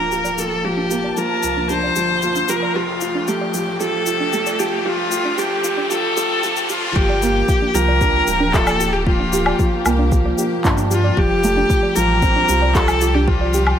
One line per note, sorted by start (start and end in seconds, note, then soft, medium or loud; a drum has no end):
0.00 1.11 D1 medium
0.00 0.65 F3 medium
0.00 6.92 F3 medium
0.00 0.91 A#3 medium
0.00 2.71 A#3 medium
0.00 1.70 D4 medium
0.00 0.63 G4 medium
0.00 0.41 A#4 medium
0.00 riser medium
0.12 0.18 G4 medium
0.12 shaker soft
0.25 0.28 D5 medium
0.25 shaker soft
0.38 0.63 F4 medium
0.38 0.47 G4 medium
0.38 0.67 A4 loud
0.38 shaker medium
0.64 0.90 F3 medium
0.64 0.73 F4 medium
0.64 1.19 G4 loud
0.64 2.73 A5 medium
0.77 0.83 D4 medium
0.91 1.16 A#3 medium
0.91 0.96 G4 medium
0.91 shaker medium
1.04 1.07 D5 medium
1.17 1.42 F3 medium
1.17 1.26 G4 medium
1.17 1.70 A#4 loud
1.17 shaker soft
1.43 1.90 C2 medium
1.43 1.52 F4 medium
1.43 shaker medium
1.57 1.62 D4 medium
1.69 1.85 D4 medium
1.69 1.76 G4 medium
1.69 2.51 C5 loud
1.69 shaker soft
1.84 1.87 D5 loud
1.96 2.43 G1 medium
1.96 2.11 F3 medium
1.96 2.05 G4 medium
1.96 shaker medium
2.22 2.48 F4 medium
2.22 2.31 F4 medium
2.22 shaker soft
2.35 2.41 D4 medium
2.35 shaker soft
2.48 2.67 F1 medium
2.48 2.74 F3 medium
2.48 2.55 G4 loud
2.48 2.78 A#4 loud
2.48 shaker medium
2.63 2.66 D5 medium
2.75 3.22 F1 medium
2.75 3.00 F3 medium
2.75 6.92 A3 medium
2.75 3.30 F4 loud
2.75 6.92 G4 medium
2.75 2.84 G4 medium
3.01 3.10 F4 medium
3.01 shaker medium
3.15 3.20 D4 medium
3.28 3.43 A3 medium
3.28 3.34 G4 medium
3.28 3.80 G4 loud
3.28 shaker soft
3.41 3.44 D5 medium
3.54 4.01 A1 medium
3.54 3.78 F3 medium
3.54 3.63 G4 medium
3.54 shaker medium
3.80 4.05 F3 medium
3.80 3.89 G4 medium
3.80 4.61 A4 loud
3.80 shaker soft
4.06 5.32 C2 medium
4.06 4.15 F4 medium
4.06 shaker medium
4.20 4.26 D4 medium
4.33 4.48 A3 medium
4.33 4.39 G4 medium
4.33 shaker soft
4.46 4.50 D5 medium
4.46 shaker soft
4.59 4.84 F3 medium
4.59 4.87 G4 medium
4.59 4.68 G4 medium
4.59 shaker medium
4.86 5.11 F3 medium
4.86 5.41 F4 loud
4.86 4.94 G4 medium
5.12 5.21 F4 medium
5.12 shaker medium
5.25 5.31 D4 medium
5.38 5.63 F3 medium
5.38 5.47 G4 medium
5.38 5.90 G4 medium
5.38 shaker soft
5.64 6.11 A1 loud
5.64 5.73 F4 medium
5.64 shaker medium
5.77 5.83 D4 medium
5.91 6.15 F3 medium
5.91 5.99 G4 medium
5.91 6.66 A4 loud
5.91 shaker soft
6.17 6.41 F3 medium
6.17 6.26 G4 medium
6.17 shaker medium
6.43 6.90 F2 medium
6.43 6.68 F3 medium
6.43 6.52 G4 medium
6.43 shaker soft
6.56 shaker soft
6.69 6.94 F3 medium
6.69 6.98 F4 loud
6.69 6.78 G4 medium
6.69 shaker medium
6.96 7.43 G1 loud
6.96 13.79 F3 medium
6.96 7.21 F3 medium
6.96 11.13 A#3 medium
6.96 11.13 G4 medium
6.96 7.76 G4 loud
6.96 7.02 G4 loud
6.96 kick medium
7.09 7.13 D5 medium
7.22 7.38 A#3 medium
7.22 7.31 G4 medium
7.22 shaker medium
7.49 7.57 F4 medium
7.49 kick loud
7.49 shaker soft
7.62 7.68 D4 medium
7.74 8.21 C2 medium
7.74 8.00 F3 medium
7.74 7.81 G4 loud
7.74 8.55 A#4 loud
7.74 shaker medium
7.89 7.92 D5 loud
8.01 8.27 D4 medium
8.01 8.10 G4 medium
8.01 kick loud
8.01 shaker soft
8.27 9.53 D1 loud
8.27 8.53 F3 medium
8.27 8.36 F4 medium
8.27 shaker medium
8.40 8.46 D4 medium
8.54 8.79 F4 medium
8.54 8.60 G4 loud
8.54 8.94 A4 loud
8.54 kick loud
8.54 clap medium
8.54 shaker soft
8.67 8.70 D5 loud
8.67 low woodblock medium
8.67 shaker soft
8.80 8.89 G4 medium
8.80 shaker medium
8.93 9.06 G4 loud
9.06 9.32 F3 medium
9.06 9.81 F4 medium
9.06 9.15 F4 medium
9.06 kick medium
9.20 9.25 D4 medium
9.33 9.39 G4 loud
9.33 9.48 G4 medium
9.33 shaker medium
9.46 9.50 D5 loud
9.46 low woodblock medium
9.59 9.84 F3 medium
9.59 9.68 G4 medium
9.59 kick loud
9.59 shaker soft
9.86 10.32 C2 medium
9.86 10.11 A#3 loud
9.86 9.94 F4 medium
9.86 low woodblock medium
9.86 shaker medium
9.99 10.04 D4 medium
10.12 10.37 F3 loud
10.12 10.18 G4 loud
10.12 kick loud
10.12 shaker soft
10.26 10.29 D5 loud
10.38 10.47 G4 medium
10.38 shaker medium
10.65 11.11 G2 medium
10.65 10.90 D4 loud
10.65 10.73 F4 medium
10.65 kick loud
10.65 clap medium
10.65 shaker soft
10.78 10.83 D4 medium
10.78 shaker soft
10.91 11.06 F3 medium
10.91 11.20 F4 medium
10.91 10.97 G4 loud
10.91 shaker medium
11.04 11.07 D5 loud
11.16 11.64 F1 loud
11.16 11.42 F3 medium
11.16 13.79 G3 medium
11.16 13.79 G4 medium
11.16 11.26 G4 medium
11.16 11.97 G4 loud
11.16 kick loud
11.44 11.59 A3 medium
11.44 11.52 F4 medium
11.44 shaker medium
11.57 11.62 D4 medium
11.70 11.75 G4 loud
11.70 kick loud
11.70 shaker soft
11.83 11.86 D5 medium
11.96 12.43 A1 medium
11.96 12.21 F3 loud
11.96 12.05 G4 medium
11.96 12.76 A#4 loud
11.96 shaker medium
12.22 12.48 C4 medium
12.22 12.31 F4 medium
12.22 kick loud
12.22 shaker soft
12.36 12.41 D4 medium
12.49 13.75 C2 loud
12.49 12.74 F3 medium
12.49 12.54 G4 loud
12.49 shaker medium
12.62 12.65 D5 medium
12.75 13.00 F4 medium
12.75 12.84 G4 medium
12.75 13.16 A4 loud
12.75 kick loud
12.75 clap medium
12.75 shaker soft
12.88 low woodblock medium
12.88 shaker soft
13.01 13.10 F4 medium
13.01 shaker medium
13.14 13.20 D4 medium
13.14 13.29 G4 medium
13.27 13.53 F3 medium
13.27 13.79 F4 medium
13.27 13.34 G4 loud
13.27 kick medium
13.41 13.44 D5 loud
13.54 13.63 G4 medium
13.54 13.69 G4 medium
13.54 shaker medium
13.67 low woodblock medium